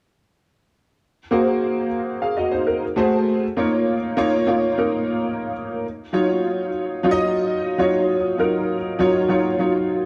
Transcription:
grand piano
1.31 A#3 F#4 G#4 C5
2.22 G#4 F5
2.37 F#4 D#5
2.51 D#4 C5
2.67 A#4
2.96 A3 F#4 G#4 C5
3.57 A#3 D#4 F4 C#5
4.17 A#3 D#4 F4 C#5
4.47 A#3 D#4 F4 C#5
4.78 A#3 D#4 F4 A#4
6.13 F#3 D#4 F4 C#5
7.03 F#3 D#4 F4 C#5
7.11 D#5
7.78 F#3 D#4 F4 C#5
8.38 F#3 D#4 F4 A#4
8.99 F#3 D#4 F4 C#5
9.28 F#3 D#4 F4 C#5
9.59 F#3 D#4 F4 C#5

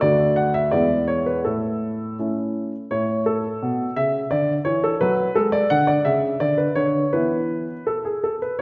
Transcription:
grand piano
0.01 D2 A3 D4 F#4 D5
0.36 F#5
0.54 E5
0.71 E2 G#3 B3 E4 D5
1.08 C#5
1.26 B4
1.45 A2 A4
2.19 A3 C#4 E4
2.91 A2 C#5
3.26 A4
3.63 B2
3.96 C#3 E5
4.31 D3 D5
4.65 E3 C#5
4.84 A4
5.01 F#3 B4
5.35 G#3 A4
5.52 D5
5.70 D3 F#5
5.87 D5
6.05 C#3 E5
6.40 D3 D5
6.58 B4
6.75 D3 C#5
7.13 E3 B3 E4 B4
7.87 A4
8.05 G#4
8.24 A4
8.42 B4

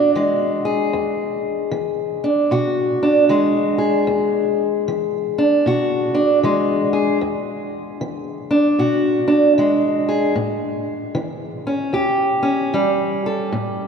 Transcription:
steel-string acoustic guitar
Already playing: D4 F#4
0.15 E3 G#3
0.65 G#4
0.93 E2
1.71 E3
2.24 D4
2.51 B2 F#4
3.03 D4
3.29 E3 G#3
3.78 G#4
4.07 E2
4.88 E3
5.38 D4
5.66 B2 F#4
6.14 D4
6.43 E3 G#3
6.93 G#4
7.21 E2
8.01 E3
8.51 D4
8.79 B2 F#4
9.28 D4
9.58 E3 G#3
10.09 G#4
10.35 A2
11.15 E3
11.67 C#4
11.93 E2 G4
12.43 C#4
12.73 E3 G3
13.26 A4
13.52 A2

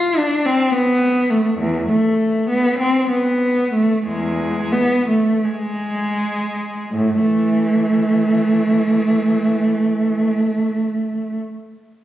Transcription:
cello
Already playing: F4
0.18 D4
0.46 C4
0.74 B3
1.30 A3
1.58 E2
1.89 A3
2.49 B3
2.79 C4
3.09 B3
3.73 A3
4.06 E2 G#3
4.72 B3
5.08 A3
5.44 G#3
6.95 A2
7.20 E3 A3

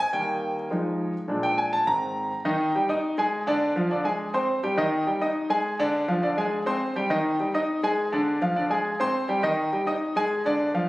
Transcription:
grand piano
0.00 G#5
0.13 D#3 G3 A#3 G5
0.71 F3 G#3 D#4
1.28 A#2 G#3 D4
1.43 G5
1.58 G#5
1.73 A5
1.87 G#2 D#3 C4 A#5
2.45 D#3 D#4 D#5
2.75 G3 G4 G5
2.89 D#4 D#5 D#6
3.18 G#3 G#4 G#5
3.47 D3 D4 D5
3.76 F3 F4 F5
3.91 D3 D4 D5
4.04 G#3 G#4 G#5
4.34 C4 C5 C6
4.63 G3 G4 G5
4.77 D#3 D#4 D#5
5.07 G3 G4 G5
5.21 D#4 D#5 D#6
5.50 G#3 G#4 G#5
5.79 D3 D4 D5
6.08 F3 F4 F5
6.22 D3 D4 D5
6.38 G#3 G#4 G#5
6.66 C4 C5 C6
6.96 G3 G4 G5
7.10 D#3 D#4 D#5
7.39 G3 G4 G5
7.54 D#4 D#5 D#6
7.83 G#3 G#4 G#5
8.12 D3 D4 D5
8.42 F3 F4 F5
8.56 D3 D4 D5
8.70 G#3 G#4 G#5
9.00 C4 C5 C6
9.28 G3 G4 G5
9.43 D#3 D#4 D#5
9.72 G3 G4 G5
9.87 D#4 D#5 D#6
10.16 G#3 G#4 G#5
10.45 D3 D4 D5
10.74 F3 F4 F5

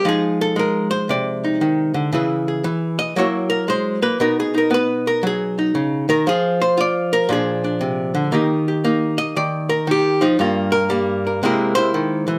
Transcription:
hollow-body jazz guitar
0.05 F3 G#3 D#4 G#4
0.41 A4
0.56 G#3 A#4
0.91 C5
1.09 C3 D5
1.44 D#4
1.61 D#3
1.94 D3
2.12 C#3 E3 E4 G#4 B4
2.48 G#4
2.64 E3
2.99 D#5
3.16 F#3 A#3 E4 F#4 C#5
3.50 A#4
3.68 G#3 C5
4.02 A#3 B4
4.20 B2 B3 D#4 A#4
4.40 G#4
4.54 D#4 A#4
4.71 B3 B4
5.07 A#4
5.23 F#3 G#4
5.59 D#4
5.75 C#3
6.09 D#3 A#4
6.27 F3 F4 G#4
6.62 C5
6.78 F4 D5
7.13 A#4
7.29 A#2 F3 D4 G#4
7.64 D4
7.81 C3
8.15 D3
8.32 D#3 A#3 D#4 G4
8.68 G4
8.84 A#3 D#4
9.18 D#5
9.36 D#3 D5
9.69 A#4
9.87 D#3 G4
10.21 F3 D#4
10.39 G2 G3 A#3 F4
10.72 A#4
10.90 G3 A#3
11.27 A#4
11.43 C3 G#3 A#3 E4 A#4
11.75 E4 C5
11.94 D#3
12.28 E3

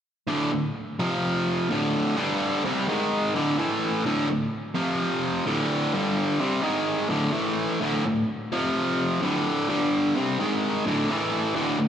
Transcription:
overdriven electric guitar
0.27 D2 A2 D3
0.52 D2 A2
0.99 F2 C3 F3
1.69 D2 A2 D3
2.16 G2 D3 G3
2.65 C3 G3 C4
2.88 G#2 D#3 G#3
3.35 D2 A2 D3
3.58 A2 E3 A3
4.05 D2 A2 D3
4.29 D2 A2
4.75 F2 C3 F3
5.46 D2 A2 D3
5.93 G2 D3 G3
6.40 C3 G3 C4
6.62 G#2 D#3 G#3
7.09 D2 A2 D3
7.32 A2 E3 A3
7.80 D2 A2 D3
8.05 D2 A2
8.52 F2 C3 F3
9.22 D2 A2 D3
9.69 G2 D3 G3
10.15 C3 G3 C4
10.39 G#2 D#3 G#3
10.86 D2 A2 D3
11.10 A2 E3 A3
11.55 D2 A2 D3
11.79 D2 A2

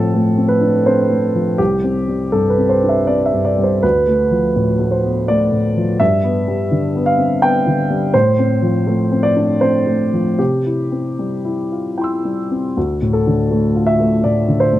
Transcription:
grand piano
Already playing: A2 F3 C4 A4
0.14 A3
0.37 C4
0.48 B4
0.61 D4
0.86 C4 C5
1.10 A3
1.35 F3
1.58 C2 G4
1.84 C4
2.09 G3
2.32 G2 A4
2.50 B4
2.58 C4
2.69 C5
2.83 D4
2.89 E5
3.07 C4 D5
3.26 E5
3.33 G2
3.45 D5
3.58 G3
3.63 C5
3.83 D2 B4
4.07 A3
4.31 F3
4.56 A2
4.80 A3
4.91 C5
5.04 B3
5.28 A3 D5
5.52 A2
5.77 F3
6.00 G2 E5
6.24 B3
6.48 G3
6.71 D3
6.96 B3
7.06 F5
7.18 C4
7.42 B3 G5
7.67 D3
7.90 G3
8.14 A2 C5
8.39 C4
8.62 F3
8.87 A3
9.12 C4
9.23 D5
9.36 D4
9.61 C4 C5
9.87 A3
10.13 F3
10.39 C3 G4
10.66 E4
10.92 C4
11.19 G3
11.45 E4
11.72 F4
11.98 E4 G5 C6
12.04 E6
12.25 G3
12.51 C4
12.77 D2
13.02 A2
13.13 A4
13.27 D3
13.51 A3
13.75 F4
13.87 E5
14.00 A3
14.24 A2 D5
14.48 D3
14.60 C5
14.73 A2

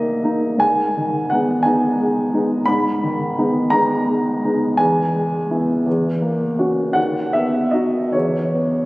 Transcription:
upright piano
Already playing: G2 G3 A#3 D#4 D#5 E5
0.23 A#3 D#4
0.58 G#2 G#5
0.97 D#3
1.30 G#3 B3 D#4 F#5
1.63 G#3 B3 D#4 G#5
2.00 G#3
2.33 G#3 B3 D#4
2.66 G#2 B5
3.03 D#3
3.38 G#3 B3 D#4
3.70 G#3 B3 D#4 A#5
4.08 G#3
4.44 G#3 B3 D#4
4.77 E2 G#5
5.15 G#3
5.51 B3 E4
5.86 E2
6.22 A#3
6.59 C#4 F#4
6.93 D#2 F#5
7.33 B3 E5
7.71 D#4 F#4 D#5
8.12 E2 C#5
8.54 B3

